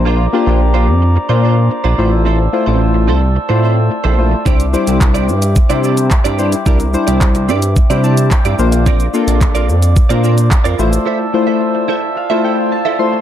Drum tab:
HH |----------------|----------------|-x-x-x-x-x-x-x-x|-x-x-x-x-x-x-x-x|
SH |----------------|----------------|xxxxxxxxxxxxxxxx|xxxxxxxxxxxxxxxx|
CP |----------------|----------------|----x-------x---|----x-------x---|
BD |----------------|----------------|o---o---o---o---|o---o---o---o---|

HH |-x-x-x-x-x-x-x-x|----------------|
SH |xxxxxxxxxxxxxxxx|----------------|
CP |----x-------x---|----------------|
BD |o---o---o---o---|----------------|